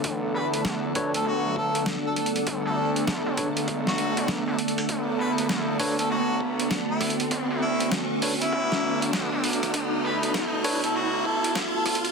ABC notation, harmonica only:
X:1
M:4/4
L:1/16
Q:"Swing 16ths" 1/4=99
K:Bm
V:1 name="Harmonica"
z2 B B z3 A F2 A2 z A A z | z A2 z6 F3 z4 | z2 B B z3 A F2 z3 E2 z | z2 E2 z3 E4 z4 z |
z2 B B z3 A F2 A2 z A A z |]